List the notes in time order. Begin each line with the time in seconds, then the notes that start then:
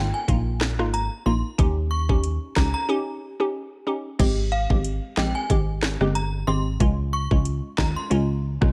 Already playing: G#1 A#3 D#4 F4 G5
0.14 G#5
0.28 A#1 A#3 D#4 F4, kick, closed hi-hat
0.61 cross-stick, snare
0.79 G#1 A#3 D#4 F4, cross-stick
0.94 A#5, closed hi-hat
1.26 A#1 A#3 D#4 F4 C6
1.58 D#2 C#4 D#4 G4, kick, closed hi-hat
1.91 C#6
2.09 C#4 D#4 G4, kick
2.24 closed hi-hat
2.56 C#2 C#4 D#4 G4 A#5, kick, cross-stick, snare
2.74 A#5
2.89 C#4 D#4 G4
3.40 C#4 D#4 G4
3.87 C#4 D#4 G4
4.19 G#1 G#3 C4 G4, kick, closed hi-hat, crash
4.52 F5
4.70 G#1 G#3 C4 G4, kick
4.84 closed hi-hat
5.17 A#1 G#3 C4 G4 G5, cross-stick, snare
5.35 G#5
5.50 G#1 G#3 C4 G4, kick, closed hi-hat
5.82 cross-stick, snare
6.01 G1 G#3 C4 G4, cross-stick
6.15 A#5, closed hi-hat
6.47 G#1 G#3 C4 G4 C6
6.80 C#2 G#3 C#4 F4, kick, closed hi-hat
7.13 C#6
7.31 C#2 G#3 C#4 F4, kick
7.45 closed hi-hat
7.78 D#2 G#3 C#4 F4 A#5, kick, cross-stick, snare
7.96 C6
8.10 C#2 G#3 C#4 F4, closed hi-hat
8.61 C2 G#3 C#4 F4, kick, cross-stick